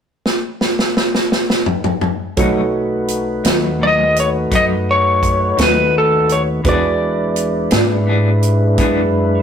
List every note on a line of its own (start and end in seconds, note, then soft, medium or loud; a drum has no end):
0.26 snare medium
0.61 snare medium
0.79 snare medium
0.97 snare medium
1.15 snare medium
1.32 snare medium
1.50 snare medium
1.66 mid tom medium
1.84 mid tom medium
2.01 mid tom medium
2.37 3.41 B1 medium
2.37 2.59 B2 medium
2.37 2.59 F#3 medium
2.37 6.61 A3 medium
2.37 2.60 A3 medium
2.37 6.60 D#4 medium
2.37 6.61 D#4 medium
2.37 2.60 D#4 medium
2.37 6.60 F#4 medium
2.37 6.61 F#4 medium
2.37 6.60 A4 medium
2.37 6.61 B4 medium
2.37 6.60 C#5 medium
2.37 kick medium
2.37 closed hi-hat medium
3.08 closed hi-hat medium
3.44 4.48 D#2 medium
3.44 3.67 F#3 soft
3.44 3.67 A3 soft
3.44 3.66 D#4 soft
3.44 snare medium
3.44 closed hi-hat medium
3.79 4.01 B2 soft
3.79 4.02 F#3 soft
3.79 4.02 A3 medium
3.79 4.03 D#4 medium
3.79 4.18 D#5 medium
4.16 4.29 C#5 medium
4.16 closed hi-hat medium
4.51 5.55 F#2 medium
4.51 4.72 B2 medium
4.51 4.73 F#3 medium
4.51 4.73 A3 medium
4.51 4.74 D#4 medium
4.51 kick medium
4.51 closed hi-hat medium
4.55 4.64 D#5 medium
4.91 5.62 C#5 medium
5.23 kick medium
5.23 closed hi-hat medium
5.57 6.61 D#2 medium
5.57 5.81 F#3 soft
5.57 5.80 A3 soft
5.57 5.79 D#4 soft
5.57 snare medium
5.57 closed hi-hat medium
5.63 5.97 B4 medium
5.98 6.32 A4 medium
6.29 6.42 C#5 medium
6.29 closed hi-hat soft
6.64 7.68 E2 medium
6.64 6.86 E3 medium
6.64 9.42 G#3 medium
6.64 6.86 B3 medium
6.64 9.42 D4 soft
6.64 6.87 D4 medium
6.64 9.42 D4 medium
6.64 9.42 E4 medium
6.64 9.42 F#4 soft
6.64 9.42 G#4 soft
6.64 6.87 G#4 medium
6.64 9.42 B4 medium
6.64 kick medium
6.64 closed hi-hat medium
6.69 9.42 D5 medium
7.36 closed hi-hat medium
7.71 8.75 G#2 medium
7.71 7.94 B3 soft
7.71 7.93 D4 soft
7.71 7.92 G#4 soft
7.71 snare loud
7.71 closed hi-hat medium
8.06 8.28 E3 soft
8.06 8.28 B3 medium
8.06 8.29 D4 medium
8.06 8.30 G#4 medium
8.42 closed hi-hat soft
8.78 9.42 F#2 medium
8.78 8.99 E3 medium
8.78 9.00 B3 medium
8.78 9.00 D4 medium
8.78 9.00 G#4 medium
8.78 kick medium
8.78 closed hi-hat medium